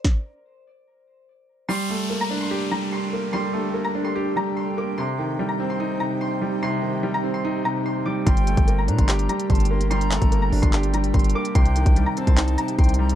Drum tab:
HH |--------------------------------|--------------------------------|--------------------------------|--------------------------------|
CP |--------------------------------|--------------------------------|--------------------------------|--------------------------------|
SD |o-------------------------------|--------------------------------|--------------------------------|--------------------------------|
BD |o-------------------------------|--------------------------------|--------------------------------|--------------------------------|

HH |--------------------------------|x-x-x-x-x---x-x-x-x-x-x-xxxx--x-|x-x-x-x-x---o-x-x-x-x-x-xxxx--x-|x-x-x-x-x---x-x-x-x-x-x-xxxx--x-|
CP |--------------------------------|----------------x---------------|----x-----------x---------------|----------------x---------------|
SD |--------------------------------|--------------------------------|--------------------------------|--------------------------------|
BD |--------------------------------|o-----o-------o---------o-------|------o-------o---------o-------|o-----o-------o---------o-------|